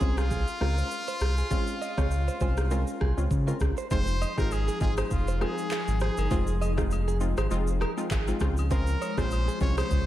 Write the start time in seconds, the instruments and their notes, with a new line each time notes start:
Already playing: trumpet G#4
0.00 analog synth bass C2, synth pluck G#3 C4 C#4 F4, clean electric guitar C5, kick, shaker
0.18 trumpet F4, cross-stick, shaker
0.31 clean electric guitar G#4, kick, shaker
0.48 shaker
0.60 analog synth bass C#2, synth pluck G#3 C4 C#4 F4, clean electric guitar A#4, cross-stick
0.78 clean electric guitar C5, shaker
0.91 shaker
1.08 clean electric guitar C5, shaker
1.20 analog synth bass C2, cross-stick, shaker
1.37 clean electric guitar G#4, shaker
1.50 synth pluck G#3 C4 C#4 F4, clean electric guitar G#4, kick, shaker
1.67 shaker
1.82 clean electric guitar D#5, shaker
1.97 analog synth bass C#2, synth pluck G#3 C4 C#4 F4, clean electric guitar C#5, kick, cross-stick, shaker
2.11 shaker
2.28 clean electric guitar C5, shaker
2.40 analog synth bass C2, synth pluck G#3 C4 C#4 F4, clean electric guitar C5, kick, shaker
2.57 cross-stick, shaker
2.71 synth pluck G#3 C4 C#4 F4, clean electric guitar A#4, shaker
2.87 shaker
3.01 analog synth bass C2, clean electric guitar G#4, kick, cross-stick
3.17 analog synth bass C#2, synth pluck G#3 C4 C#4 F4, shaker
3.31 analog synth bass C#3, kick, shaker
3.47 synth pluck G#3 C4 C#4 F4, clean electric guitar A#4, shaker
3.60 analog synth bass C#2, kick, cross-stick, shaker
3.77 clean electric guitar C5, shaker
3.91 analog synth bass F1, analog synth pad F3 D#4 G#4, synth pluck G#3 C4 D#4 F4, clean electric guitar C5, trumpet C5, kick, shaker
4.07 shaker
4.22 clean electric guitar D#5, high agogo, shaker
4.37 analog synth bass G#1, synth pluck G#3 C4 D#4 F4, trumpet A#4, kick, cross-stick, shaker
4.51 trumpet G#4, high agogo, shaker
4.68 clean electric guitar G#4, shaker
4.81 analog synth bass G#1, synth pluck G#3 C4 D#4 F4, trumpet G#4, kick, shaker
4.98 clean electric guitar C5, cross-stick, high agogo, shaker
5.11 analog synth bass F1, trumpet F4, kick, shaker
5.28 clean electric guitar C5, shaker
5.41 synth pluck G#3 C4 D#4 F4, trumpet G#4, clean electric guitar A#4, cross-stick, high agogo
5.58 shaker
5.71 clean electric guitar G#4, clap, high agogo, low woodblock, shaker
5.88 analog synth bass G#1, shaker
6.00 trumpet G#4, clean electric guitar C5, cross-stick, shaker
6.17 analog synth bass G1, clean electric guitar A#4, high agogo, shaker
6.31 analog synth bass F1, synth pluck G#3 C4 D#4 F4, clean electric guitar C5, kick, shaker
6.47 shaker
6.61 clean electric guitar D#5, high agogo, shaker
6.77 synth pluck G#3 C4 D#4 F4, kick, cross-stick, shaker
6.91 high agogo, shaker
7.08 clean electric guitar G#4, shaker
7.20 synth pluck G#3 C4 D#4 F4, shaker
7.37 analog synth bass G#1, clean electric guitar C5, cross-stick, high agogo, shaker
7.51 analog synth bass F1, synth pluck G#3 C4 D#4 F4, shaker
7.67 shaker
7.81 clean electric guitar A#4, cross-stick, high agogo
7.97 synth pluck G#3 C4 D#4 F4, shaker
8.11 analog synth bass G#1, clean electric guitar G#4, kick, clap, high agogo, low woodblock, shaker
8.28 synth pluck G#3 C4 D#4 F4, shaker
8.40 analog synth bass C#2, analog synth pad F3 G#3 F4, synth pluck G#3 C4 C#4 F4, kick, cross-stick, shaker
8.57 high agogo, shaker
8.71 synth pluck G#3 C4 C#4 F4, trumpet A#4, clean electric guitar C5, kick, shaker
8.87 shaker
9.01 clean electric guitar C#5, high agogo, shaker
9.17 analog synth bass A#1, synth pluck G#3 C4 C#4 F4, trumpet C5, kick, cross-stick, shaker
9.31 high agogo, shaker
9.48 clean electric guitar G#4, shaker
9.61 analog synth bass C2, synth pluck G#3 C4 C#4 F4, trumpet C#5, kick, shaker
9.78 clean electric guitar C5, trumpet C5, cross-stick, high agogo, shaker
9.91 analog synth bass C#2, kick, shaker